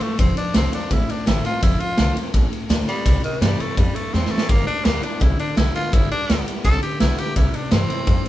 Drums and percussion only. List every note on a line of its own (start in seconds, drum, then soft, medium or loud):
0.01 ride medium
0.19 kick loud
0.19 ride medium
0.37 ride medium
0.54 snare loud
0.54 ride medium
0.73 ride medium
0.91 kick loud
0.91 ride medium
1.09 ride medium
1.27 snare loud
1.27 ride medium
1.45 ride medium
1.63 kick loud
1.63 ride medium
1.80 ride medium
1.98 snare loud
1.98 ride medium
2.17 ride medium
2.34 kick loud
2.34 ride medium
2.53 ride medium
2.70 snare loud
2.70 ride medium
2.88 snare soft
2.88 ride medium
3.06 kick loud
3.06 ride loud
3.24 ride medium
3.42 snare loud
3.42 ride medium
3.60 ride medium
3.77 kick loud
3.77 ride medium
3.96 ride medium
4.14 snare medium
4.26 snare medium
4.38 snare loud
4.49 kick loud
4.49 ride medium
4.68 ride medium
4.85 snare loud
4.85 ride medium
5.03 ride medium
5.21 kick loud
5.21 ride medium
5.39 ride medium
5.57 snare loud
5.57 ride medium
5.75 snare soft
5.75 ride medium
5.93 kick loud
5.93 ride medium
6.11 ride medium
6.30 snare loud
6.30 ride medium
6.48 ride medium
6.65 kick loud
6.65 ride medium
6.83 ride medium
7.00 snare loud
7.00 ride medium
7.18 snare soft
7.18 ride medium
7.36 kick loud
7.36 ride medium
7.54 ride medium
7.71 snare loud
7.71 ride medium
7.90 ride medium
8.07 kick loud
8.07 ride medium
8.25 ride medium